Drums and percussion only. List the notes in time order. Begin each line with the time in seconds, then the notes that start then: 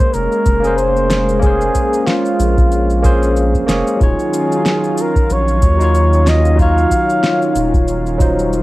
0.00 kick, shaker
0.14 shaker
0.32 shaker
0.46 kick, shaker
0.64 shaker
0.78 shaker
0.97 shaker
1.10 snare, shaker
1.29 shaker
1.43 kick, shaker
1.61 shaker
1.75 kick, shaker
1.93 shaker
2.07 snare, shaker
2.26 shaker
2.40 shaker
2.58 kick, shaker
2.72 shaker
2.90 shaker
3.04 kick, shaker
3.23 shaker
3.37 shaker
3.55 kick, shaker
3.69 snare, shaker
3.87 shaker
4.01 kick, shaker
4.19 shaker
4.33 shaker
4.52 shaker
4.66 snare, shaker
4.84 shaker
4.98 shaker
5.16 kick, shaker
5.30 shaker
5.48 shaker
5.62 kick, shaker
5.81 shaker
5.95 shaker
6.13 shaker
6.27 snare, shaker
6.45 shaker
6.59 kick, shaker
6.78 shaker
6.91 kick, shaker
7.10 shaker
7.24 snare, shaker
7.42 shaker
7.56 shaker
7.74 kick, shaker
7.88 shaker
8.06 shaker
8.20 kick, shaker
8.39 shaker
8.53 shaker